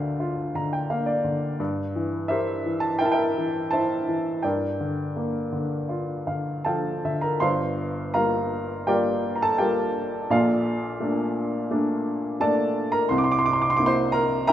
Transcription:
0.00 1.55 D2 medium
0.00 0.55 D3 soft
0.00 0.90 A#3 soft
0.00 0.85 D4 soft
0.00 1.62 A#4 soft
0.00 1.06 D5 soft
0.00 1.61 E5 medium
0.00 0.90 F5 medium
0.00 0.71 G5 medium
0.20 1.55 F4 medium
0.55 1.23 D3 soft
0.55 0.72 A#5 medium
0.73 0.89 G5 medium
0.90 1.58 A#3 soft
0.90 1.06 F5 medium
1.06 1.55 D5 soft
1.24 1.58 D3 soft
1.60 4.41 G2 medium
1.96 2.64 E3 soft
2.28 3.69 G4 soft
2.28 2.99 A#4 soft
2.28 3.69 C5 medium
2.28 2.84 E5 medium
2.66 3.36 E3 soft
2.80 3.00 A5 medium
2.99 3.72 E4 soft
2.99 3.12 A#4 medium
2.99 3.11 E5 medium
2.99 3.07 G5 medium
3.05 3.14 A5 medium
3.12 4.40 A#4 medium
3.12 3.71 E5 medium
3.12 3.73 G5 medium
3.38 4.07 E3 soft
3.71 4.43 E4 soft
3.71 4.41 C5 medium
3.71 4.41 E5 medium
3.71 4.46 A5 medium
4.09 4.44 E3 soft
4.43 7.37 G2 medium
4.43 7.00 A#4 soft
4.43 7.00 D5 soft
4.43 6.64 G5 medium
4.80 5.51 D3 soft
5.16 6.62 A#3 soft
5.52 6.26 D3 soft
5.89 7.37 F4 soft
6.27 7.03 D3 soft
6.27 6.63 F5 soft
6.65 7.39 F3 soft
6.65 7.19 A4 soft
6.65 7.19 F5 soft
6.65 7.02 G5 soft
6.65 7.24 A5 medium
7.05 7.40 D3 soft
7.05 7.39 E5 soft
7.21 7.40 A#4 soft
7.21 7.41 A#5 medium
7.40 10.27 G1 medium
7.40 10.26 G2 medium
7.40 8.10 C5 medium
7.40 8.10 F5 medium
7.40 8.10 C6 medium
8.14 8.85 G3 soft
8.14 8.85 A#3 soft
8.14 8.85 F4 soft
8.14 8.83 A#4 medium
8.14 8.83 F5 medium
8.14 8.83 A#5 medium
8.87 9.57 G3 soft
8.87 9.57 A#3 soft
8.87 9.57 F4 soft
8.87 9.34 G4 medium
8.87 9.34 A#4 medium
8.87 9.34 D5 medium
8.87 9.38 G5 medium
9.35 9.41 A#5 soft
9.42 9.59 A4 medium
9.42 9.60 A5 medium
9.58 10.28 G3 soft
9.58 10.28 A#3 soft
9.58 10.29 F4 soft
9.58 10.27 G4 medium
9.58 10.27 A#4 medium
9.58 10.32 G5 medium
10.30 13.06 A#1 medium
10.30 13.06 A#2 medium
10.30 12.37 F4 soft
10.30 12.37 A4 medium
10.30 12.37 D5 medium
10.30 12.47 F5 medium
11.00 11.69 A3 soft
11.00 11.69 A#3 soft
11.00 11.69 D4 soft
11.71 12.38 A3 soft
11.71 12.39 A#3 soft
11.71 12.39 D4 medium
12.40 13.08 A3 soft
12.40 13.08 A#3 soft
12.40 13.08 D4 medium
12.40 12.89 A4 medium
12.40 12.89 D5 medium
12.40 12.94 A5 medium
12.92 13.09 A#4 medium
12.92 13.10 A#5 medium
13.09 14.53 C2 medium
13.09 14.53 C3 medium
13.09 13.17 C6 medium
13.18 13.26 D6 medium
13.24 13.32 C6 medium
13.32 13.40 D6 medium
13.39 13.47 C6 medium
13.46 13.55 D6 medium
13.53 13.62 C6 medium
13.62 13.70 D6 medium
13.70 13.78 C6 medium
13.77 14.46 A#3 soft
13.77 14.46 C4 soft
13.77 14.46 E4 medium
13.77 13.86 D6 medium
13.86 14.12 C5 medium
13.86 14.14 C6 medium
14.12 14.46 A#4 medium
14.12 14.46 A#5 medium
14.47 14.53 A#3 medium
14.47 14.53 C4 soft
14.47 14.53 E4 medium
14.47 14.53 A#4 medium
14.47 14.53 E5 medium
14.47 14.53 G5 medium
14.47 14.53 A#5 loud

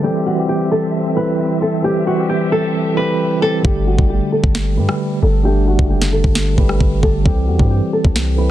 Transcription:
0.02 0.34 E3 loud
0.02 0.35 G3 medium
0.02 3.61 C4 medium
0.02 0.36 C4 medium
0.02 3.61 G4 medium
0.02 0.23 G4 loud
0.02 3.61 E5 medium
0.06 0.37 G4 loud
0.26 0.46 F#4 medium
0.35 1.11 E3 medium
0.35 1.12 G3 medium
0.35 1.12 C4 medium
0.40 1.13 G4 medium
0.49 0.68 G4 medium
0.72 1.14 A4 medium
1.14 1.79 E3 medium
1.14 1.80 G3 medium
1.14 1.81 C4 medium
1.14 1.59 B4 medium
1.19 1.81 E4 medium
1.62 1.81 A4 medium
1.82 2.14 E3 loud
1.82 2.16 G3 medium
1.82 2.16 C4 medium
1.82 2.04 G4 loud
1.86 2.17 G4 loud
2.07 2.26 F#4 medium
2.15 2.91 E3 medium
2.15 2.92 G3 medium
2.15 2.92 C4 medium
2.19 2.93 G4 medium
2.29 2.49 G4 medium
2.52 2.94 A4 medium
2.95 3.38 E3 medium
2.95 3.39 G3 medium
2.95 3.40 C4 medium
2.95 3.39 B4 medium
2.99 3.40 G4 medium
3.40 3.62 E3 medium
3.40 3.62 G3 medium
3.40 3.64 C4 medium
3.40 3.62 A4 medium
3.44 3.64 G4 medium
3.62 3.97 G1 loud
3.62 3.95 D3 loud
3.62 3.96 G3 medium
3.62 3.97 A3 medium
3.62 3.84 G4 loud
3.62 kick loud
3.87 4.07 F#4 medium
3.96 4.20 G1 loud
3.96 4.72 D3 medium
3.96 4.73 G3 medium
3.96 4.73 A3 medium
3.96 kick medium
4.01 4.74 G4 medium
4.10 4.29 G4 medium
4.32 4.75 A4 medium
4.44 4.79 G1 loud
4.44 kick medium
4.55 snare loud
4.75 4.88 G2 loud
4.75 5.40 D3 medium
4.75 5.41 G3 medium
4.75 5.42 A3 medium
4.75 5.20 B4 medium
4.80 5.42 G4 medium
4.89 cross-stick loud
5.22 5.77 G1 loud
5.22 5.42 A4 medium
5.43 5.75 D3 loud
5.43 5.77 G3 medium
5.43 5.77 A3 medium
5.43 5.65 G4 loud
5.47 5.78 D4 loud
5.68 5.87 F#4 medium
5.77 6.22 F#1 loud
5.77 6.52 D3 medium
5.77 6.53 G3 medium
5.77 6.54 A3 medium
5.77 kick medium
5.81 6.54 G4 medium
5.90 6.10 G4 medium
6.02 snare medium
6.13 6.55 A4 medium
6.24 6.57 G1 loud
6.24 kick medium
6.35 snare loud
6.56 6.80 G1 loud
6.56 6.99 D3 medium
6.56 7.00 G3 medium
6.56 7.01 A3 medium
6.56 7.00 B4 medium
6.56 kick medium
6.60 7.01 G4 medium
6.69 cross-stick medium
6.80 7.02 G1 loud
6.80 kick loud
7.00 7.25 G1 loud
7.00 7.23 D3 medium
7.00 7.24 G3 medium
7.00 7.24 A3 medium
7.00 7.22 A4 medium
7.00 kick loud
7.05 7.25 G4 medium
7.24 7.50 C2 loud
7.24 7.56 E3 loud
7.24 7.57 G3 medium
7.24 7.58 C4 medium
7.24 7.45 G4 loud
7.24 kick loud
7.28 7.59 G4 loud
7.48 7.59 E2 loud
7.48 7.68 F#4 medium
7.57 7.81 G2 loud
7.57 8.33 E3 medium
7.57 8.33 G3 medium
7.57 8.34 C4 medium
7.57 kick medium
7.62 8.35 G4 medium
7.71 7.90 G4 medium
7.93 8.36 A4 medium
8.05 8.51 C2 loud
8.05 kick medium
8.16 snare loud
8.36 8.51 E3 medium
8.36 8.51 G3 medium
8.36 8.51 C4 medium
8.36 8.51 B4 medium
8.40 8.51 E4 medium

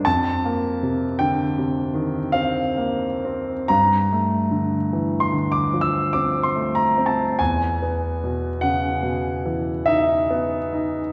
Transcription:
0.05 3.65 F2 medium
0.05 1.19 A5 medium
0.45 1.04 A#3 soft
0.83 1.42 C3 soft
1.19 1.57 D3 soft
1.19 2.34 G5 medium
1.58 2.19 C3 soft
1.94 2.58 D#3 soft
2.32 3.05 C4 soft
2.32 3.68 F5 medium
2.77 3.51 A#3 soft
3.25 3.70 C4 soft
3.68 7.36 G2 soft
3.68 5.22 A#5 medium
4.13 4.76 A3 soft
4.51 5.16 D3 soft
4.93 5.33 E3 soft
5.20 5.51 C6 medium
5.33 5.97 D3 soft
5.52 5.82 D6 medium
5.73 6.38 F3 soft
5.81 6.12 E6 medium
6.13 6.80 C4 soft
6.13 6.44 D6 medium
6.43 6.75 C6 medium
6.56 7.23 A3 soft
6.75 7.07 A#5 medium
6.98 7.40 C4 soft
7.06 7.38 A5 medium
7.39 11.12 E2 soft
7.39 8.62 G#5 medium
7.82 8.47 B3 soft
8.24 8.87 B2 soft
8.61 9.03 C#3 soft
8.61 9.85 F#5 medium
9.03 9.69 B2 soft
9.46 10.12 E3 soft
9.86 10.56 D#4 medium
9.86 11.12 E5 medium
10.30 11.00 B3 soft
10.74 11.12 D#4 soft

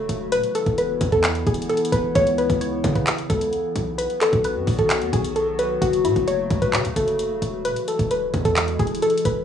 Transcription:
0.00 0.30 C#3 medium
0.00 0.28 F#3 medium
0.00 0.30 A3 medium
0.00 0.28 F#4 medium
0.00 0.28 A4 medium
0.09 0.34 E1 loud
0.09 closed hi-hat medium
0.32 0.43 D#1 loud
0.32 2.14 B2 medium
0.32 3.95 E3 medium
0.32 3.95 B3 medium
0.32 3.95 E4 loud
0.32 0.49 B4 loud
0.32 closed hi-hat medium
0.43 closed hi-hat medium
0.55 0.72 A4 medium
0.55 closed hi-hat medium
0.66 0.99 E1 loud
0.66 kick medium
0.66 closed hi-hat medium
0.78 1.10 B4 medium
0.78 closed hi-hat medium
1.01 1.45 E2 loud
1.01 kick loud
1.01 closed hi-hat medium
1.12 1.21 A4 medium
1.12 kick medium
1.12 closed hi-hat soft
1.24 clap loud
1.24 closed hi-hat medium
1.35 closed hi-hat medium
1.47 1.69 E1 loud
1.47 1.64 G#4 medium
1.47 kick loud
1.47 closed hi-hat soft
1.54 closed hi-hat medium
1.62 closed hi-hat medium
1.69 1.87 A4 medium
1.69 closed hi-hat medium
1.77 closed hi-hat medium
1.85 closed hi-hat medium
1.92 2.14 E1 loud
1.92 2.10 B4 medium
1.92 kick medium
1.92 closed hi-hat medium
2.15 2.48 C#2 loud
2.15 3.97 C#3 medium
2.15 2.33 C#5 medium
2.15 kick loud
2.15 closed hi-hat medium
2.27 closed hi-hat medium
2.38 2.56 B4 medium
2.38 closed hi-hat medium
2.50 2.83 C#2 loud
2.50 kick medium
2.50 closed hi-hat medium
2.61 2.93 C#5 medium
2.61 closed hi-hat medium
2.84 3.06 C#3 loud
2.84 kick loud
2.84 closed hi-hat medium
2.96 3.04 B4 medium
2.96 kick loud
2.96 closed hi-hat soft
3.07 clap loud
3.07 closed hi-hat medium
3.18 closed hi-hat medium
3.30 3.52 C#2 loud
3.30 3.94 A4 medium
3.30 kick loud
3.30 closed hi-hat medium
3.41 closed hi-hat medium
3.53 closed hi-hat medium
3.76 4.09 B1 loud
3.76 closed hi-hat medium
3.98 5.80 D#3 medium
3.98 7.61 F#3 medium
3.98 5.80 B3 medium
3.98 7.61 F#4 medium
3.98 4.16 B4 loud
3.98 closed hi-hat medium
4.10 closed hi-hat medium
4.21 4.39 A4 medium
4.21 clap medium
4.21 closed hi-hat medium
4.33 4.57 B1 loud
4.33 kick medium
4.33 closed hi-hat medium
4.44 4.77 B4 medium
4.44 closed hi-hat medium
4.56 4.67 F#2 loud
4.67 5.03 B1 loud
4.67 kick loud
4.67 open hi-hat medium
4.79 4.87 A4 medium
4.79 kick loud
4.79 closed hi-hat soft
4.90 clap loud
4.90 closed hi-hat medium
5.02 5.12 D#2 loud
5.02 closed hi-hat medium
5.13 5.79 B1 loud
5.13 5.30 G#4 medium
5.13 kick loud
5.13 closed hi-hat medium
5.24 closed hi-hat medium
5.36 5.53 A4 medium
5.36 closed hi-hat medium
5.59 5.76 B4 medium
5.59 closed hi-hat medium
5.81 6.06 F#1 loud
5.81 7.63 C#3 medium
5.81 7.63 A3 medium
5.81 5.99 F#4 loud
5.81 kick loud
5.81 closed hi-hat medium
5.93 closed hi-hat medium
6.05 6.16 A2 loud
6.05 6.22 E4 medium
6.05 closed hi-hat medium
6.16 6.49 F#1 loud
6.16 kick medium
6.16 closed hi-hat medium
6.28 6.60 C#5 medium
6.28 closed hi-hat medium
6.50 6.75 C#2 loud
6.50 kick loud
6.50 closed hi-hat medium
6.62 6.71 B4 medium
6.62 kick loud
6.62 closed hi-hat soft
6.73 6.86 C#3 loud
6.73 clap loud
6.73 closed hi-hat medium
6.85 6.96 C#2 loud
6.85 closed hi-hat medium
6.96 7.32 F#1 loud
6.96 7.61 A4 medium
6.96 kick loud
6.96 closed hi-hat medium
7.08 closed hi-hat medium
7.19 closed hi-hat medium
7.30 7.41 E1 loud
7.42 7.66 E1 loud
7.42 closed hi-hat medium
7.65 7.76 D#1 loud
7.65 9.45 B2 medium
7.65 9.45 E3 medium
7.65 9.45 G#3 medium
7.65 9.45 E4 loud
7.65 7.82 B4 loud
7.65 closed hi-hat medium
7.76 closed hi-hat medium
7.88 8.05 A4 medium
7.88 closed hi-hat medium
7.99 8.32 E1 loud
7.99 kick medium
7.99 closed hi-hat medium
8.11 8.43 B4 medium
8.11 closed hi-hat medium
8.34 8.78 E2 loud
8.34 kick loud
8.34 closed hi-hat medium
8.45 8.54 A4 medium
8.45 kick loud
8.45 closed hi-hat soft
8.56 clap loud
8.56 closed hi-hat medium
8.68 closed hi-hat medium
8.79 9.01 E1 loud
8.79 8.97 G#4 medium
8.79 kick loud
8.79 closed hi-hat medium
8.87 closed hi-hat medium
8.95 closed hi-hat medium
9.02 9.20 A4 medium
9.02 closed hi-hat medium
9.10 closed hi-hat medium
9.18 closed hi-hat medium
9.25 9.45 E1 loud
9.25 9.43 B4 medium
9.25 kick medium
9.25 closed hi-hat medium

